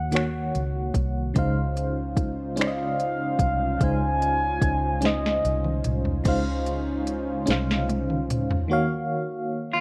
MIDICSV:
0, 0, Header, 1, 7, 480
1, 0, Start_track
1, 0, Tempo, 816327
1, 799, Time_signature, 6, 3, 24, 8
1, 5765, End_track
2, 0, Start_track
2, 0, Title_t, "Soft synth lead"
2, 0, Program_c, 0, 80
2, 0, Note_on_c, 0, 78, 118
2, 539, Note_off_c, 0, 78, 0
2, 1540, Note_on_c, 0, 77, 94
2, 2253, Note_on_c, 0, 80, 127
2, 2261, Note_off_c, 0, 77, 0
2, 2972, Note_on_c, 0, 75, 95
2, 2980, Note_off_c, 0, 80, 0
2, 3505, Note_off_c, 0, 75, 0
2, 5765, End_track
3, 0, Start_track
3, 0, Title_t, "Clean electric guitar"
3, 0, Program_c, 1, 27
3, 5722, Note_on_c, 1, 65, 71
3, 5765, Note_off_c, 1, 65, 0
3, 5765, End_track
4, 0, Start_track
4, 0, Title_t, "Analog synth pad"
4, 0, Program_c, 2, 89
4, 798, Note_on_c, 2, 61, 70
4, 798, Note_on_c, 2, 65, 82
4, 798, Note_on_c, 2, 72, 64
4, 799, Note_on_c, 2, 63, 63
4, 3654, Note_off_c, 2, 61, 0
4, 3655, Note_off_c, 2, 63, 0
4, 3655, Note_off_c, 2, 65, 0
4, 3655, Note_off_c, 2, 72, 0
4, 3668, Note_on_c, 2, 63, 61
4, 3669, Note_on_c, 2, 61, 72
4, 3669, Note_on_c, 2, 72, 62
4, 3671, Note_on_c, 2, 65, 71
4, 5099, Note_off_c, 2, 61, 0
4, 5099, Note_off_c, 2, 63, 0
4, 5099, Note_off_c, 2, 72, 0
4, 5100, Note_off_c, 2, 65, 0
4, 5765, End_track
5, 0, Start_track
5, 0, Title_t, "FM electric piano"
5, 0, Program_c, 3, 5
5, 0, Control_c, 3, 64, 127
5, 0, Note_on_c, 3, 51, 70
5, 0, Note_on_c, 3, 58, 67
5, 0, Note_on_c, 3, 66, 64
5, 0, Note_on_c, 3, 73, 58
5, 0, Note_on_c, 3, 78, 74
5, 69, Note_off_c, 3, 51, 0
5, 69, Note_on_c, 3, 51, 78
5, 75, Note_off_c, 3, 58, 0
5, 75, Note_on_c, 3, 58, 66
5, 82, Note_off_c, 3, 66, 0
5, 82, Note_on_c, 3, 66, 66
5, 89, Note_off_c, 3, 73, 0
5, 89, Note_on_c, 3, 73, 74
5, 96, Note_off_c, 3, 78, 0
5, 96, Note_on_c, 3, 78, 74
5, 731, Note_off_c, 3, 51, 0
5, 734, Note_off_c, 3, 58, 0
5, 738, Note_off_c, 3, 66, 0
5, 741, Note_off_c, 3, 73, 0
5, 745, Note_off_c, 3, 78, 0
5, 788, Note_on_c, 3, 49, 87
5, 793, Note_on_c, 3, 56, 76
5, 801, Note_on_c, 3, 63, 79
5, 807, Control_c, 3, 64, 0
5, 807, Note_on_c, 3, 72, 73
5, 815, Note_on_c, 3, 77, 95
5, 914, Control_c, 3, 64, 127
5, 1450, Note_off_c, 3, 49, 0
5, 1453, Note_off_c, 3, 56, 0
5, 1457, Note_off_c, 3, 63, 0
5, 1460, Note_off_c, 3, 72, 0
5, 1464, Note_off_c, 3, 77, 0
5, 1506, Note_on_c, 3, 61, 68
5, 1513, Note_on_c, 3, 56, 57
5, 1520, Note_on_c, 3, 63, 64
5, 1526, Note_on_c, 3, 72, 61
5, 1534, Note_on_c, 3, 74, 56
5, 1564, Note_off_c, 3, 74, 0
5, 1571, Note_on_c, 3, 75, 70
5, 2170, Note_off_c, 3, 61, 0
5, 2173, Note_off_c, 3, 56, 0
5, 2177, Note_off_c, 3, 63, 0
5, 2180, Note_off_c, 3, 72, 0
5, 2202, Note_off_c, 3, 75, 0
5, 2226, Note_on_c, 3, 49, 71
5, 2231, Note_on_c, 3, 56, 66
5, 2239, Note_on_c, 3, 63, 70
5, 2248, Note_on_c, 3, 72, 70
5, 2253, Note_on_c, 3, 77, 73
5, 2890, Note_off_c, 3, 49, 0
5, 2892, Note_off_c, 3, 56, 0
5, 2896, Note_off_c, 3, 63, 0
5, 2900, Note_off_c, 3, 72, 0
5, 2903, Note_off_c, 3, 77, 0
5, 2945, Note_on_c, 3, 61, 64
5, 2953, Note_on_c, 3, 56, 62
5, 2961, Note_on_c, 3, 63, 59
5, 2965, Note_on_c, 3, 72, 59
5, 2976, Note_on_c, 3, 75, 70
5, 3609, Note_off_c, 3, 61, 0
5, 3613, Note_off_c, 3, 56, 0
5, 3617, Note_off_c, 3, 63, 0
5, 3619, Note_off_c, 3, 72, 0
5, 3625, Note_off_c, 3, 75, 0
5, 3668, Note_on_c, 3, 49, 90
5, 3676, Note_on_c, 3, 56, 78
5, 3682, Note_on_c, 3, 63, 78
5, 3687, Control_c, 3, 64, 0
5, 3687, Note_on_c, 3, 72, 79
5, 3695, Note_on_c, 3, 77, 89
5, 3797, Control_c, 3, 64, 127
5, 4331, Note_off_c, 3, 49, 0
5, 4335, Note_off_c, 3, 56, 0
5, 4338, Note_off_c, 3, 63, 0
5, 4340, Note_off_c, 3, 72, 0
5, 4344, Note_off_c, 3, 77, 0
5, 4387, Note_on_c, 3, 61, 80
5, 4395, Note_on_c, 3, 56, 71
5, 4402, Note_on_c, 3, 63, 73
5, 4409, Note_on_c, 3, 72, 68
5, 4418, Note_on_c, 3, 77, 87
5, 5050, Note_off_c, 3, 61, 0
5, 5054, Note_off_c, 3, 56, 0
5, 5058, Note_off_c, 3, 63, 0
5, 5061, Note_off_c, 3, 72, 0
5, 5065, Note_off_c, 3, 77, 0
5, 5104, Note_on_c, 3, 51, 90
5, 5112, Note_on_c, 3, 58, 82
5, 5119, Note_on_c, 3, 66, 87
5, 5124, Note_on_c, 3, 73, 81
5, 5126, Control_c, 3, 64, 0
5, 5132, Note_on_c, 3, 77, 107
5, 5213, Control_c, 3, 64, 127
5, 5765, Note_off_c, 3, 51, 0
5, 5765, Note_off_c, 3, 58, 0
5, 5765, Note_off_c, 3, 66, 0
5, 5765, Note_off_c, 3, 73, 0
5, 5765, Note_off_c, 3, 77, 0
5, 5765, End_track
6, 0, Start_track
6, 0, Title_t, "Fingered electric bass"
6, 0, Program_c, 4, 33
6, 0, Note_on_c, 4, 39, 78
6, 294, Note_off_c, 4, 39, 0
6, 326, Note_on_c, 4, 37, 82
6, 538, Note_off_c, 4, 37, 0
6, 559, Note_on_c, 4, 36, 86
6, 775, Note_off_c, 4, 36, 0
6, 801, Note_on_c, 4, 37, 86
6, 1976, Note_off_c, 4, 37, 0
6, 1996, Note_on_c, 4, 36, 81
6, 2214, Note_off_c, 4, 36, 0
6, 2241, Note_on_c, 4, 37, 99
6, 2696, Note_off_c, 4, 37, 0
6, 2717, Note_on_c, 4, 37, 94
6, 3174, Note_off_c, 4, 37, 0
6, 3202, Note_on_c, 4, 36, 99
6, 3417, Note_off_c, 4, 36, 0
6, 3443, Note_on_c, 4, 36, 81
6, 3657, Note_off_c, 4, 36, 0
6, 3681, Note_on_c, 4, 37, 87
6, 4376, Note_off_c, 4, 37, 0
6, 4403, Note_on_c, 4, 36, 91
6, 4884, Note_off_c, 4, 36, 0
6, 4884, Note_on_c, 4, 38, 84
6, 5098, Note_off_c, 4, 38, 0
6, 5765, End_track
7, 0, Start_track
7, 0, Title_t, "Drums"
7, 72, Note_on_c, 9, 42, 68
7, 97, Note_on_c, 9, 26, 100
7, 131, Note_off_c, 9, 42, 0
7, 155, Note_off_c, 9, 26, 0
7, 323, Note_on_c, 9, 42, 51
7, 382, Note_off_c, 9, 42, 0
7, 554, Note_on_c, 9, 36, 68
7, 557, Note_on_c, 9, 42, 60
7, 613, Note_off_c, 9, 36, 0
7, 615, Note_off_c, 9, 42, 0
7, 798, Note_on_c, 9, 42, 60
7, 799, Note_on_c, 9, 36, 98
7, 856, Note_off_c, 9, 42, 0
7, 857, Note_off_c, 9, 36, 0
7, 1040, Note_on_c, 9, 42, 47
7, 1099, Note_off_c, 9, 42, 0
7, 1275, Note_on_c, 9, 36, 88
7, 1276, Note_on_c, 9, 42, 63
7, 1333, Note_off_c, 9, 36, 0
7, 1335, Note_off_c, 9, 42, 0
7, 1512, Note_on_c, 9, 42, 69
7, 1536, Note_on_c, 9, 26, 103
7, 1571, Note_off_c, 9, 42, 0
7, 1595, Note_off_c, 9, 26, 0
7, 1762, Note_on_c, 9, 42, 46
7, 1821, Note_off_c, 9, 42, 0
7, 1994, Note_on_c, 9, 36, 77
7, 1996, Note_on_c, 9, 42, 66
7, 2053, Note_off_c, 9, 36, 0
7, 2055, Note_off_c, 9, 42, 0
7, 2238, Note_on_c, 9, 36, 91
7, 2238, Note_on_c, 9, 42, 63
7, 2297, Note_off_c, 9, 36, 0
7, 2297, Note_off_c, 9, 42, 0
7, 2480, Note_on_c, 9, 42, 51
7, 2539, Note_off_c, 9, 42, 0
7, 2714, Note_on_c, 9, 36, 90
7, 2716, Note_on_c, 9, 42, 62
7, 2773, Note_off_c, 9, 36, 0
7, 2775, Note_off_c, 9, 42, 0
7, 2950, Note_on_c, 9, 42, 79
7, 2971, Note_on_c, 9, 38, 58
7, 3009, Note_off_c, 9, 42, 0
7, 3030, Note_off_c, 9, 38, 0
7, 3092, Note_on_c, 9, 38, 52
7, 3151, Note_off_c, 9, 38, 0
7, 3202, Note_on_c, 9, 42, 49
7, 3261, Note_off_c, 9, 42, 0
7, 3318, Note_on_c, 9, 47, 66
7, 3376, Note_off_c, 9, 47, 0
7, 3435, Note_on_c, 9, 42, 68
7, 3437, Note_on_c, 9, 45, 79
7, 3494, Note_off_c, 9, 42, 0
7, 3496, Note_off_c, 9, 45, 0
7, 3558, Note_on_c, 9, 43, 83
7, 3617, Note_off_c, 9, 43, 0
7, 3675, Note_on_c, 9, 49, 87
7, 3677, Note_on_c, 9, 42, 63
7, 3678, Note_on_c, 9, 36, 97
7, 3734, Note_off_c, 9, 49, 0
7, 3736, Note_off_c, 9, 42, 0
7, 3737, Note_off_c, 9, 36, 0
7, 3918, Note_on_c, 9, 42, 47
7, 3977, Note_off_c, 9, 42, 0
7, 4158, Note_on_c, 9, 42, 63
7, 4217, Note_off_c, 9, 42, 0
7, 4393, Note_on_c, 9, 42, 83
7, 4414, Note_on_c, 9, 38, 59
7, 4452, Note_off_c, 9, 42, 0
7, 4473, Note_off_c, 9, 38, 0
7, 4534, Note_on_c, 9, 38, 53
7, 4592, Note_off_c, 9, 38, 0
7, 4640, Note_on_c, 9, 48, 75
7, 4643, Note_on_c, 9, 42, 53
7, 4699, Note_off_c, 9, 48, 0
7, 4702, Note_off_c, 9, 42, 0
7, 4762, Note_on_c, 9, 47, 72
7, 4821, Note_off_c, 9, 47, 0
7, 4881, Note_on_c, 9, 42, 71
7, 4883, Note_on_c, 9, 45, 90
7, 4940, Note_off_c, 9, 42, 0
7, 4942, Note_off_c, 9, 45, 0
7, 5000, Note_on_c, 9, 43, 97
7, 5059, Note_off_c, 9, 43, 0
7, 5765, End_track
0, 0, End_of_file